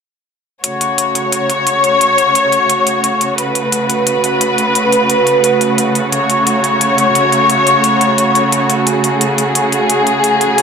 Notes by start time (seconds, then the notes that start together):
0.64 C#3 A3 F#4 C#5, closed hi-hat
0.81 closed hi-hat
0.98 closed hi-hat
1.15 closed hi-hat
1.32 closed hi-hat
1.50 closed hi-hat
1.67 closed hi-hat
1.84 closed hi-hat
2.01 closed hi-hat
2.18 closed hi-hat
2.35 closed hi-hat
2.52 closed hi-hat
2.70 closed hi-hat
2.87 closed hi-hat
3.04 closed hi-hat
3.21 closed hi-hat
3.38 B4, closed hi-hat
3.55 closed hi-hat
3.72 closed hi-hat
3.90 closed hi-hat
4.07 closed hi-hat
4.24 closed hi-hat
4.41 closed hi-hat
4.58 closed hi-hat
4.75 closed hi-hat
4.92 closed hi-hat
5.10 closed hi-hat
5.27 closed hi-hat
5.44 closed hi-hat
5.61 closed hi-hat
5.78 closed hi-hat
5.95 closed hi-hat
6.12 C#5, closed hi-hat
6.30 closed hi-hat
6.47 closed hi-hat
6.64 closed hi-hat
6.81 closed hi-hat
6.98 closed hi-hat
7.15 closed hi-hat
7.32 closed hi-hat
7.50 closed hi-hat
7.67 closed hi-hat
7.84 closed hi-hat
8.01 closed hi-hat
8.18 closed hi-hat
8.35 closed hi-hat
8.52 closed hi-hat
8.70 closed hi-hat
8.87 G#4, closed hi-hat
9.04 closed hi-hat
9.21 closed hi-hat
9.38 closed hi-hat
9.55 closed hi-hat
9.72 closed hi-hat
9.90 closed hi-hat
10.07 closed hi-hat
10.24 closed hi-hat
10.41 closed hi-hat
10.58 closed hi-hat